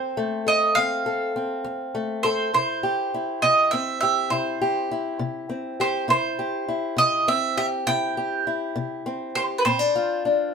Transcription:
0.00 0.40 F2 medium
0.00 0.76 C4 medium
0.00 0.45 A4 medium
0.00 0.47 C5 medium
0.17 1.93 A3 medium
0.47 1.05 A4 medium
0.47 0.78 D#5 medium
0.75 1.29 F2 medium
0.75 1.35 C4 medium
0.75 2.28 F5 loud
1.06 2.23 A4 medium
1.36 2.54 C4 medium
1.64 2.18 F2 medium
1.95 2.50 A3 medium
2.23 2.50 A4 medium
2.23 2.53 C5 medium
2.54 3.07 C3 medium
2.54 3.14 E4 medium
2.54 3.42 C5 medium
2.83 4.02 G4 medium
3.14 4.30 E4 medium
3.42 3.96 C3 medium
3.42 3.70 D#5 medium
3.71 5.48 C4 medium
3.71 3.99 E5 medium
4.01 4.60 G4 medium
4.01 4.29 E5 medium
4.30 4.84 C3 medium
4.30 4.90 E4 medium
4.30 5.16 C5 medium
4.62 5.79 G4 medium
4.91 6.06 E4 medium
5.19 5.73 C3 medium
5.49 6.05 C4 medium
5.80 6.06 G4 medium
5.80 6.09 C5 medium
6.08 6.62 C3 medium
6.08 6.67 E4 medium
6.08 6.98 C5 medium
6.39 7.56 G4 medium
6.68 7.86 E4 medium
6.97 7.51 C3 medium
6.97 7.29 D#5 loud
7.28 9.05 C4 medium
7.28 7.56 E5 medium
7.57 8.16 G4 medium
7.57 7.65 E5 medium
7.87 8.40 C3 medium
7.87 8.46 E4 medium
7.87 9.40 G5 loud
8.17 9.34 G4 medium
8.47 9.62 E4 medium
8.76 9.29 C3 medium
9.06 9.62 C4 medium
9.35 9.62 G4 medium
9.35 9.42 C5 medium
9.58 9.65 B4 medium
9.65 10.19 A#2 medium
9.65 9.79 C4 medium
9.65 10.54 C5 medium
9.79 10.24 D4 medium
9.96 10.54 F4 medium
10.25 10.54 D4 medium

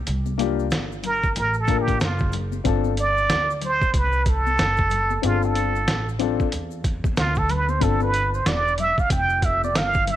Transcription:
0.07 0.69 C2 loud
0.07 closed hi-hat medium
0.07 maracas medium
0.26 high conga medium
0.26 maracas soft
0.38 0.63 A#3 medium
0.38 0.64 D4 medium
0.38 0.64 F4 medium
0.38 0.65 G4 medium
0.38 closed hi-hat medium
0.38 low conga medium
0.38 maracas medium
0.59 maracas soft
0.71 1.33 G1 medium
0.71 snare loud
0.71 closed hi-hat medium
0.71 maracas medium
0.92 maracas soft
1.03 1.35 A#4 loud
1.03 closed hi-hat medium
1.03 low conga medium
1.03 maracas soft
1.23 kick medium
1.23 maracas soft
1.36 1.98 A1 loud
1.36 1.62 A#4 loud
1.36 closed hi-hat loud
1.36 maracas medium
1.54 maracas soft
1.60 1.83 A4 medium
1.67 1.93 A#3 medium
1.67 1.93 D4 medium
1.67 1.93 F4 medium
1.67 1.94 A#4 medium
1.67 kick medium
1.67 closed hi-hat medium
1.67 maracas medium
1.81 2.04 G4 medium
1.88 kick medium
1.88 closed hi-hat soft
1.88 high conga medium
1.88 maracas soft
2.00 2.62 F#1 loud
2.00 2.34 F4 medium
2.00 snare loud
2.00 closed hi-hat medium
2.00 maracas medium
2.19 kick loud
2.19 maracas soft
2.32 closed hi-hat medium
2.32 low conga medium
2.32 maracas soft
2.52 high conga medium
2.52 maracas soft
2.64 3.27 G1 loud
2.64 2.89 C4 medium
2.64 2.90 D4 medium
2.64 2.90 F4 medium
2.64 2.91 A4 medium
2.64 kick loud
2.64 closed hi-hat medium
2.64 maracas medium
2.84 high conga medium
2.84 maracas soft
2.97 3.59 D5 loud
2.97 closed hi-hat medium
2.97 maracas medium
3.17 maracas soft
3.29 3.79 D2 medium
3.29 snare loud
3.29 closed hi-hat medium
3.29 maracas medium
3.50 maracas soft
3.61 3.99 C5 loud
3.61 closed hi-hat medium
3.61 low conga medium
3.61 maracas soft
3.82 muted upright bass stroke soft
3.82 kick medium
3.82 maracas soft
3.94 4.55 C2 medium
3.94 4.31 B4 medium
3.94 kick medium
3.94 closed hi-hat loud
3.94 maracas medium
4.12 maracas medium
4.26 5.28 A4 loud
4.26 kick medium
4.26 closed hi-hat medium
4.26 maracas medium
4.47 high conga medium
4.47 maracas soft
4.58 5.20 F#1 medium
4.58 snare loud
4.58 closed hi-hat medium
4.58 maracas medium
4.77 kick medium
4.77 maracas soft
4.90 closed hi-hat medium
4.90 low conga medium
4.90 maracas soft
5.10 high conga medium
5.10 maracas soft
5.22 5.85 G1 loud
5.22 5.71 C4 medium
5.22 5.71 D4 medium
5.22 5.71 F4 medium
5.22 5.32 G#4 medium
5.22 closed hi-hat medium
5.22 maracas medium
5.26 5.47 F4 medium
5.31 5.75 A4 medium
5.43 6.09 A4 medium
5.43 high conga medium
5.43 maracas soft
5.55 closed hi-hat medium
5.55 maracas medium
5.76 maracas soft
5.88 6.37 A1 medium
5.88 snare loud
5.88 closed hi-hat medium
5.88 maracas medium
6.09 maracas soft
6.19 6.44 C4 medium
6.19 6.45 D4 medium
6.19 6.45 F4 medium
6.19 6.45 A4 medium
6.19 closed hi-hat medium
6.19 low conga medium
6.19 maracas soft
6.40 kick medium
6.40 maracas soft
6.52 7.14 E2 medium
6.52 closed hi-hat loud
6.52 maracas medium
6.71 maracas medium
6.84 kick medium
6.84 closed hi-hat medium
6.84 maracas medium
7.04 kick medium
7.04 high conga medium
7.04 maracas soft
7.17 7.79 D2 loud
7.17 7.39 F4 medium
7.17 snare loud
7.17 closed hi-hat medium
7.17 maracas medium
7.35 7.52 A4 loud
7.35 kick loud
7.35 maracas soft
7.49 7.71 B4 medium
7.49 closed hi-hat medium
7.49 low conga medium
7.49 maracas soft
7.69 7.84 C5 medium
7.69 high conga medium
7.69 maracas soft
7.80 8.43 G1 loud
7.80 8.06 C4 medium
7.80 8.06 D4 medium
7.80 8.06 F4 medium
7.80 8.02 A4 loud
7.80 8.07 A4 medium
7.80 kick loud
7.80 closed hi-hat medium
7.80 maracas medium
8.01 8.36 B4 loud
8.01 high conga medium
8.01 maracas soft
8.14 closed hi-hat medium
8.14 maracas medium
8.34 8.49 C5 medium
8.34 maracas medium
8.46 8.95 E1 medium
8.46 8.81 D5 loud
8.46 snare loud
8.46 closed hi-hat loud
8.46 maracas medium
8.68 maracas soft
8.78 9.01 E5 loud
8.78 closed hi-hat medium
8.78 low conga medium
8.78 maracas soft
8.98 9.12 F5 loud
8.98 muted upright bass stroke soft
8.98 kick medium
8.98 maracas soft
9.10 9.75 F1 loud
9.10 9.46 G5 loud
9.10 kick loud
9.10 closed hi-hat loud
9.10 maracas medium
9.30 maracas medium
9.42 9.63 E5 loud
9.42 kick medium
9.42 closed hi-hat medium
9.42 maracas medium
9.64 9.79 D5 loud
9.64 high conga medium
9.64 maracas soft
9.75 10.16 G1 loud
9.75 10.11 F5 loud
9.75 snare loud
9.75 closed hi-hat medium
9.75 maracas medium
9.94 kick medium
9.94 maracas soft
10.07 10.16 E5 loud
10.07 closed hi-hat medium
10.07 low conga medium
10.07 maracas soft

